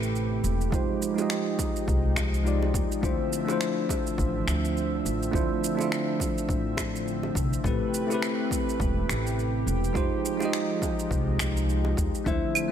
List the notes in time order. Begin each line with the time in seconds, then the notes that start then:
Already playing: A1 C3 A3 C4 E4 G4 B4
0.03 shaker
0.15 shaker
0.44 E1, shaker
0.61 shaker
0.71 F2 F3 G#3 D#4 F4 G4 C5, kick, shaker
1.02 shaker
1.14 G#3 D#4 F4
1.18 G4 D#5, high bongo, shaker
1.30 finger snap, shaker
1.59 kick, high bongo, shaker
1.76 shaker
1.88 C2, kick, shaker
2.16 finger snap, kick, high bongo, shaker
2.34 shaker
2.43 G#3 D#4 F4 G4, shaker
2.48 D5
2.62 high bongo
2.74 D#2, kick, shaker
2.92 shaker
3.01 D2 D3 A3 C4 D4 E4 F4 C5 E5, kick, shaker
3.33 shaker
3.45 A3 D4 E4, high bongo
3.50 F4 C5, shaker
3.61 finger snap, shaker
3.89 kick, high bongo, shaker
4.07 shaker
4.18 A1, kick, shaker
4.47 D2, finger snap, high bongo, shaker
4.65 shaker
4.77 shaker
5.05 A1, shaker
5.23 shaker
5.31 D2 A3 D4 E4 F4 C5, kick
5.35 shaker
5.64 shaker
5.75 A3 D4, high bongo
5.80 E4 F4 E5, shaker
5.92 finger snap, shaker
6.20 kick, high bongo, shaker
6.38 shaker
6.49 A1, kick, shaker
6.77 finger snap, kick, high bongo, shaker
6.96 shaker
7.08 shaker
7.23 high bongo
7.35 C2, kick, shaker
7.53 shaker
7.64 A1 C3 A3 C4 E4 G4 B4, kick, shaker
7.94 shaker
8.07 A3 C4 E4, high bongo
8.11 G4 B4, shaker
8.22 finger snap, shaker
8.51 kick, high bongo, shaker
8.69 shaker
8.80 E1, kick, shaker
9.09 A1, finger snap, high bongo, shaker
9.27 shaker
9.39 shaker
9.67 E1, shaker
9.84 shaker
9.93 F2 F3 G#3 D#4 F4 G4, kick, shaker
9.97 D#4 C5
10.25 shaker
10.38 G#3 D#4 F4, high bongo
10.42 G4 D#5, shaker
10.53 finger snap, shaker
10.82 kick, high bongo, shaker
10.99 shaker
11.11 C2, kick, shaker
11.39 finger snap, kick, high bongo, shaker
11.57 shaker
11.69 shaker
11.85 high bongo
11.97 D#2, kick, shaker
12.15 shaker
12.24 D2 D3 F3 A3 C4 D4 E4 C5 E5, kick, shaker
12.55 claves, shaker
12.68 A3